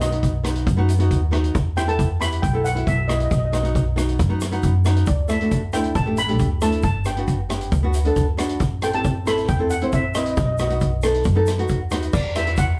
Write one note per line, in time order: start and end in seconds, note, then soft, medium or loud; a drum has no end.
0.00 0.63 B1 medium
0.00 0.08 D#4 medium
0.00 0.08 F#4 medium
0.00 0.42 D#5 medium
0.00 cross-stick medium
0.00 closed hi-hat medium
0.00 shaker medium
0.11 0.31 B3 medium
0.11 0.32 D#4 medium
0.11 0.32 F#4 medium
0.11 closed hi-hat medium
0.23 kick medium
0.23 closed hi-hat medium
0.23 shaker medium
0.43 0.64 B3 medium
0.43 0.65 D#4 medium
0.43 0.65 F#4 medium
0.43 cross-stick medium
0.43 closed hi-hat medium
0.43 shaker medium
0.55 closed hi-hat medium
0.66 1.11 F#2 medium
0.66 kick loud
0.66 closed hi-hat medium
0.66 shaker medium
0.77 0.91 B3 medium
0.77 0.91 D#4 medium
0.77 0.91 F#4 medium
0.89 closed hi-hat medium
0.89 shaker medium
0.99 1.19 B3 medium
0.99 1.20 D#4 medium
0.99 1.20 F#4 medium
0.99 closed hi-hat medium
1.11 1.53 D#2 medium
1.11 kick medium
1.11 closed hi-hat medium
1.11 shaker soft
1.31 1.54 B3 medium
1.31 1.54 D#4 medium
1.31 1.55 F#4 medium
1.31 cross-stick medium
1.31 closed hi-hat medium
1.44 closed hi-hat soft
1.44 shaker soft
1.55 2.39 E2 medium
1.55 kick loud
1.55 closed hi-hat medium
1.55 shaker soft
1.76 1.83 B3 medium
1.76 1.84 E4 medium
1.76 1.84 G4 medium
1.76 1.88 G5 medium
1.76 cross-stick medium
1.76 closed hi-hat medium
1.76 shaker medium
1.86 2.07 B3 medium
1.86 2.08 E4 medium
1.86 2.08 A4 medium
1.86 2.22 A5 medium
1.86 closed hi-hat soft
1.99 kick medium
1.99 closed hi-hat medium
1.99 shaker medium
2.20 2.40 B3 medium
2.20 2.41 E4 medium
2.20 2.41 G4 medium
2.20 2.44 B5 medium
2.20 cross-stick medium
2.20 closed hi-hat medium
2.20 shaker medium
2.32 closed hi-hat medium
2.42 2.85 B1 medium
2.42 2.65 G5 medium
2.42 kick loud
2.42 closed hi-hat medium
2.42 shaker medium
2.53 2.67 B3 medium
2.53 2.67 E4 medium
2.53 2.68 A4 medium
2.65 2.75 F#5 medium
2.65 closed hi-hat medium
2.65 shaker medium
2.74 2.95 B3 medium
2.74 2.96 E4 medium
2.74 2.96 F#4 medium
2.74 closed hi-hat medium
2.87 3.29 B1 medium
2.87 3.10 E5 medium
2.87 kick medium
2.87 closed hi-hat medium
2.87 shaker medium
3.08 3.31 B3 medium
3.08 3.31 E4 medium
3.08 3.31 G4 medium
3.08 3.15 D#5 medium
3.08 cross-stick medium
3.08 closed hi-hat medium
3.08 shaker medium
3.16 3.23 D#5 medium
3.20 3.30 D#5 medium
3.20 closed hi-hat medium
3.20 shaker soft
3.31 4.15 B1 medium
3.31 3.37 D#5 soft
3.31 kick loud
3.31 closed hi-hat medium
3.31 shaker medium
3.38 3.44 D#5 medium
3.45 3.52 D#5 medium
3.52 3.59 B3 medium
3.52 3.59 D#4 medium
3.52 3.60 F#4 medium
3.52 3.60 D#5 medium
3.52 cross-stick medium
3.52 closed hi-hat medium
3.52 shaker medium
3.61 3.83 B3 medium
3.61 3.84 D#4 medium
3.61 3.84 F#4 medium
3.61 3.68 D#5 soft
3.61 closed hi-hat medium
3.75 kick medium
3.75 closed hi-hat medium
3.75 shaker medium
3.96 4.16 B3 medium
3.96 4.16 D#4 medium
3.96 4.17 F#4 medium
3.96 cross-stick medium
3.96 closed hi-hat medium
3.96 shaker medium
4.09 closed hi-hat soft
4.19 4.61 F#2 medium
4.19 kick loud
4.19 closed hi-hat medium
4.19 shaker medium
4.29 4.43 B3 medium
4.29 4.43 D#4 medium
4.29 4.44 F#4 medium
4.41 cross-stick medium
4.41 closed hi-hat medium
4.41 shaker loud
4.52 4.72 B3 medium
4.52 4.72 D#4 medium
4.52 4.72 F#4 medium
4.52 closed hi-hat medium
4.63 5.05 F#2 medium
4.63 kick medium
4.63 closed hi-hat medium
4.63 shaker medium
4.85 5.07 B3 medium
4.85 5.07 D#4 medium
4.85 5.08 F#4 medium
4.85 cross-stick medium
4.85 closed hi-hat medium
4.85 shaker loud
4.96 closed hi-hat medium
4.96 shaker soft
5.06 5.91 D2 medium
5.06 5.28 D5 medium
5.06 kick loud
5.06 closed hi-hat medium
5.06 shaker medium
5.28 5.35 A3 medium
5.28 5.36 D4 medium
5.28 5.36 E4 medium
5.28 5.75 E5 medium
5.28 cross-stick medium
5.28 closed hi-hat medium
5.28 shaker medium
5.41 5.60 A3 medium
5.41 5.61 D4 medium
5.41 5.61 F#4 medium
5.41 closed hi-hat soft
5.51 kick medium
5.51 closed hi-hat medium
5.51 shaker medium
5.73 5.93 A3 medium
5.73 5.93 D4 medium
5.73 5.94 E4 medium
5.73 5.84 G5 medium
5.73 cross-stick medium
5.73 closed hi-hat medium
5.73 shaker medium
5.84 closed hi-hat soft
5.95 6.39 A1 medium
5.95 6.18 A5 medium
5.95 kick loud
5.95 closed hi-hat medium
5.95 shaker medium
6.06 6.19 A3 medium
6.06 6.20 D4 medium
6.06 6.20 G4 medium
6.17 6.63 B5 loud
6.17 closed hi-hat medium
6.17 shaker loud
6.28 6.48 A3 medium
6.28 6.49 D4 medium
6.28 6.49 G4 medium
6.28 closed hi-hat medium
6.39 6.81 D2 medium
6.39 kick medium
6.39 closed hi-hat medium
6.39 shaker medium
6.61 6.84 A3 medium
6.61 6.84 D4 medium
6.61 6.85 E4 medium
6.61 6.83 A5 medium
6.61 cross-stick medium
6.61 closed hi-hat medium
6.61 shaker medium
6.72 closed hi-hat medium
6.82 7.68 G1 medium
6.82 7.07 A5 medium
6.82 kick loud
6.82 closed hi-hat medium
6.82 shaker medium
7.05 7.12 B3 medium
7.05 7.12 D4 medium
7.05 7.13 G4 medium
7.05 7.47 G5 medium
7.05 cross-stick medium
7.05 closed hi-hat medium
7.05 shaker medium
7.16 7.37 B3 medium
7.16 7.37 D4 medium
7.16 7.38 F#4 medium
7.16 closed hi-hat medium
7.28 kick medium
7.28 closed hi-hat medium
7.28 shaker medium
7.49 7.69 B3 medium
7.49 7.70 D4 medium
7.49 7.70 G4 medium
7.49 cross-stick medium
7.49 closed hi-hat medium
7.49 shaker medium
7.61 closed hi-hat medium
7.72 8.14 D2 medium
7.72 kick loud
7.72 closed hi-hat medium
7.72 shaker medium
7.83 7.96 B3 medium
7.83 7.97 D4 medium
7.83 7.97 F#4 medium
7.94 closed hi-hat medium
7.94 shaker loud
8.05 8.25 B3 medium
8.05 8.25 D4 medium
8.05 8.26 A4 medium
8.05 closed hi-hat medium
8.16 8.58 D2 medium
8.16 kick medium
8.16 closed hi-hat medium
8.16 shaker medium
8.37 8.60 B3 medium
8.37 8.60 D4 medium
8.37 8.61 F#4 loud
8.37 cross-stick medium
8.37 closed hi-hat medium
8.37 shaker medium
8.49 closed hi-hat medium
8.60 9.45 A1 medium
8.60 kick medium
8.60 closed hi-hat medium
8.60 shaker medium
8.82 8.89 C4 medium
8.82 8.89 E4 medium
8.82 8.90 A4 medium
8.82 8.94 G5 medium
8.82 cross-stick medium
8.82 closed hi-hat medium
8.82 shaker medium
8.93 9.13 C4 medium
8.93 9.14 E4 medium
8.93 9.14 G4 medium
8.93 9.25 A5 loud
8.93 closed hi-hat medium
9.04 kick medium
9.04 closed hi-hat medium
9.04 shaker medium
9.25 9.46 C4 medium
9.25 9.46 E4 medium
9.25 9.47 A4 medium
9.25 9.47 B5 medium
9.25 cross-stick medium
9.25 closed hi-hat medium
9.25 shaker medium
9.38 closed hi-hat medium
9.48 9.93 E2 medium
9.48 9.71 G5 medium
9.48 kick loud
9.48 closed hi-hat medium
9.48 shaker medium
9.59 9.73 C4 medium
9.59 9.73 E4 medium
9.59 9.73 A4 medium
9.70 9.93 F#5 medium
9.70 closed hi-hat medium
9.70 shaker medium
9.81 10.02 C4 medium
9.81 10.02 E4 medium
9.81 10.02 C5 medium
9.81 closed hi-hat medium
9.92 10.35 A#1 medium
9.92 10.16 E5 medium
9.92 kick medium
9.92 closed hi-hat soft
9.92 shaker medium
10.15 10.37 C4 medium
10.15 10.37 E4 medium
10.15 10.38 B4 medium
10.15 10.22 D#5 medium
10.15 cross-stick medium
10.15 closed hi-hat medium
10.15 shaker medium
10.23 10.29 D#5 medium
10.23 closed hi-hat medium
10.23 shaker soft
10.30 10.37 D#5 medium
10.37 11.21 B1 medium
10.37 10.45 D#5 soft
10.37 kick loud
10.37 closed hi-hat medium
10.37 shaker medium
10.46 10.51 D#5 medium
10.53 10.59 D#5 medium
10.58 10.66 B3 medium
10.58 10.66 D#4 medium
10.58 10.66 F#4 medium
10.58 10.66 D#5 medium
10.58 cross-stick medium
10.58 closed hi-hat medium
10.58 shaker medium
10.68 10.89 B3 medium
10.68 10.90 D#4 medium
10.68 10.90 F#4 medium
10.68 10.75 D#5 medium
10.68 closed hi-hat soft
10.68 shaker soft
10.80 kick medium
10.80 closed hi-hat medium
10.80 shaker medium
11.02 11.23 B3 medium
11.02 11.23 D#4 medium
11.02 11.24 A4 medium
11.02 cross-stick medium
11.02 closed hi-hat medium
11.02 shaker medium
11.14 closed hi-hat medium
11.24 11.69 F#2 medium
11.24 kick loud
11.24 closed hi-hat medium
11.24 shaker medium
11.35 11.49 B3 medium
11.35 11.49 D#4 medium
11.35 11.50 A4 medium
11.46 cross-stick medium
11.46 closed hi-hat medium
11.46 shaker medium
11.58 11.78 B3 medium
11.58 11.78 D#4 medium
11.58 11.79 F#4 medium
11.58 closed hi-hat medium
11.68 12.11 D#2 medium
11.68 kick medium
11.68 closed hi-hat medium
11.68 shaker medium
11.91 12.13 B3 medium
11.91 12.14 D#4 medium
11.91 12.14 F#4 medium
11.91 cross-stick medium
11.91 closed hi-hat medium
11.91 shaker medium
12.02 closed hi-hat medium
12.02 shaker soft
12.13 12.80 E2 loud
12.13 12.34 D5 medium
12.13 kick loud
12.13 crash loud
12.13 shaker medium
12.35 12.42 B3 medium
12.35 12.42 E4 medium
12.35 12.43 G4 medium
12.35 12.59 E5 medium
12.35 cross-stick medium
12.35 closed hi-hat medium
12.35 shaker medium
12.46 12.66 B3 medium
12.46 12.67 E4 medium
12.46 12.67 F#4 medium
12.46 closed hi-hat medium
12.57 12.80 F#5 medium
12.57 kick medium
12.57 closed hi-hat medium
12.57 shaker medium